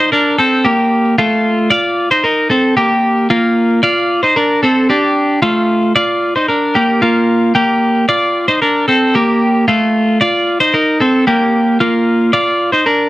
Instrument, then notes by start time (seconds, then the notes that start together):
clean electric guitar
0.00 D#4 C5
0.12 D4 A#4
0.39 C4 A4
0.65 A#3 G4
1.18 A3 F4
1.70 F4 D5
2.11 D#4 C5
2.24 D#4 A#4
2.50 C4 A4
2.77 A#3 G4
3.30 A#3 F4
3.83 F4 D5
4.23 D#4 C5
4.36 D4 A#4
4.63 C4 A4
4.90 D4 G4
5.42 A3 F4
5.96 F4 D5
6.36 D#4 C5
6.48 D4 A#4
6.75 A#3 G4
7.02 A#3 F4
7.55 A#3 G4
8.09 F4 D5
8.48 D#4 C5
8.62 D4 A#4
8.88 C4 A4
9.15 A#3 G4
9.68 A3 F4
10.21 F4 D5
10.60 D#4 C5
10.74 D#4 A#4
11.00 C4 A4
11.27 A#3 G4
11.80 A#3 F4
12.33 F4 D5
12.72 D#4 C5
12.86 D4 A#4